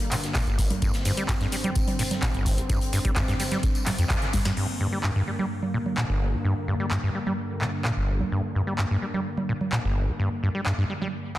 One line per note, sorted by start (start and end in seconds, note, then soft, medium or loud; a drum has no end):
0.00 4.53 G2 medium
0.00 4.53 D3 medium
0.00 0.81 A#3 medium
0.00 closed hi-hat soft
0.00 shaker soft
0.11 0.16 A#2 medium
0.11 snare soft
0.11 clap medium
0.11 open hi-hat loud
0.11 tambourine medium
0.11 shaker medium
0.24 snare soft
0.24 closed hi-hat medium
0.24 shaker soft
0.35 0.42 A#2 loud
0.35 kick loud
0.35 snare loud
0.35 clap loud
0.35 open hi-hat medium
0.35 tambourine medium
0.35 shaker soft
0.47 0.72 G1 loud
0.47 closed hi-hat soft
0.59 kick medium
0.59 open hi-hat loud
0.59 tambourine medium
0.59 shaker medium
0.70 0.74 G2 medium
0.70 closed hi-hat soft
0.70 closed hi-hat medium
0.70 low conga medium
0.70 shaker soft
0.82 0.92 G2 medium
0.82 4.56 C4 medium
0.82 kick loud
0.82 closed hi-hat medium
0.82 tambourine medium
0.82 shaker soft
0.93 snare medium
0.93 closed hi-hat soft
0.93 shaker soft
1.05 1.12 G2 medium
1.05 open hi-hat loud
1.05 tambourine medium
1.05 shaker medium
1.17 1.24 G3 medium
1.17 closed hi-hat medium
1.17 shaker soft
1.29 1.35 G2 medium
1.29 kick loud
1.29 snare loud
1.29 clap loud
1.29 closed hi-hat medium
1.29 tambourine medium
1.29 shaker soft
1.41 1.47 G2 loud
1.41 snare soft
1.41 closed hi-hat soft
1.52 1.56 G3 medium
1.52 open hi-hat loud
1.52 tambourine medium
1.52 shaker medium
1.64 1.71 G3 medium
1.64 closed hi-hat medium
1.64 low conga medium
1.64 shaker soft
1.75 kick loud
1.75 closed hi-hat medium
1.75 tambourine medium
1.75 shaker soft
1.88 closed hi-hat soft
1.88 low conga medium
1.88 shaker soft
1.99 2.03 A#2 medium
1.99 open hi-hat loud
1.99 tambourine medium
1.99 shaker medium
2.11 snare soft
2.11 closed hi-hat medium
2.11 low conga medium
2.11 shaker soft
2.22 2.29 A#2 loud
2.22 kick loud
2.22 snare loud
2.22 clap loud
2.22 closed hi-hat medium
2.22 tambourine medium
2.22 shaker soft
2.34 2.59 G1 loud
2.34 closed hi-hat soft
2.46 kick medium
2.46 open hi-hat loud
2.46 tambourine medium
2.46 shaker medium
2.58 2.62 G2 medium
2.58 closed hi-hat medium
2.58 shaker soft
2.69 2.79 G2 medium
2.69 kick loud
2.69 closed hi-hat medium
2.69 tambourine medium
2.69 shaker soft
2.81 closed hi-hat soft
2.81 shaker soft
2.93 2.99 G2 medium
2.93 open hi-hat loud
2.93 shaker medium
3.05 3.11 G3 medium
3.05 kick medium
3.05 closed hi-hat medium
3.05 shaker soft
3.16 3.23 G2 loud
3.16 kick loud
3.16 snare loud
3.16 clap loud
3.16 closed hi-hat medium
3.16 tambourine medium
3.16 shaker soft
3.28 3.35 G2 loud
3.28 snare medium
3.28 closed hi-hat soft
3.28 shaker soft
3.40 3.44 G3 medium
3.40 open hi-hat loud
3.40 tambourine medium
3.40 shaker medium
3.52 3.58 G3 medium
3.52 snare medium
3.52 closed hi-hat medium
3.52 low conga medium
3.52 shaker soft
3.63 kick loud
3.63 closed hi-hat medium
3.63 tambourine medium
3.63 shaker soft
3.75 closed hi-hat soft
3.75 tambourine medium
3.75 shaker soft
3.86 3.91 G#2 medium
3.86 snare medium
3.86 clap medium
3.86 open hi-hat loud
3.86 low conga medium
3.86 shaker medium
3.98 4.05 F2 loud
3.98 closed hi-hat medium
3.98 tambourine medium
3.98 shaker soft
4.10 4.17 F2 medium
4.10 kick loud
4.10 clap loud
4.10 open hi-hat medium
4.10 shaker soft
4.21 4.26 D3 medium
4.21 snare soft
4.21 closed hi-hat soft
4.21 shaker soft
4.33 4.40 G2 medium
4.33 kick medium
4.33 open hi-hat loud
4.33 high tom medium
4.33 tambourine medium
4.33 shaker medium
4.45 4.52 G2 loud
4.45 snare medium
4.45 closed hi-hat soft
4.45 closed hi-hat medium
4.45 low conga medium
4.45 shaker soft
4.57 11.38 G2 medium
4.57 4.67 G2 medium
4.57 11.38 D3 medium
4.57 11.38 A#3 medium
4.57 crash medium
4.81 4.87 G2 medium
4.92 4.99 G3 medium
5.04 5.10 G2 medium
5.04 clap loud
5.16 5.22 G2 medium
5.27 5.31 G3 medium
5.39 5.46 G3 medium
5.39 low conga medium
5.63 low conga medium
5.74 5.78 A#2 medium
5.86 low conga medium
5.97 6.04 A#2 loud
5.97 clap loud
6.10 6.34 G1 medium
6.33 6.37 G2 medium
6.45 6.54 G2 medium
6.68 6.74 G2 medium
6.80 6.86 G3 medium
6.91 6.98 G2 medium
6.91 clap loud
7.03 7.10 G2 loud
7.15 7.19 G3 medium
7.27 7.33 G3 medium
7.27 low conga medium
7.61 7.66 A#2 medium
7.61 clap medium
7.85 7.92 A#2 loud
7.85 clap loud
7.97 8.22 G1 medium
8.20 8.24 G2 medium
8.20 low conga medium
8.32 8.42 G2 medium
8.55 8.62 G2 medium
8.67 8.74 G3 medium
8.79 8.85 G2 medium
8.79 clap loud
8.91 8.97 G2 loud
9.02 9.06 G3 medium
9.14 9.21 G3 medium
9.14 low conga medium
9.38 low conga medium
9.49 9.53 A#2 medium
9.61 low conga medium
9.72 9.79 A#2 loud
9.72 clap loud
9.84 10.09 G1 medium
10.08 10.12 G2 medium
10.19 10.29 G2 medium
10.43 10.49 G2 medium
10.55 10.61 G3 medium
10.66 10.73 G2 medium
10.66 clap loud
10.78 10.84 G2 loud
10.90 10.94 G3 medium
11.02 11.08 G3 medium
11.02 low conga medium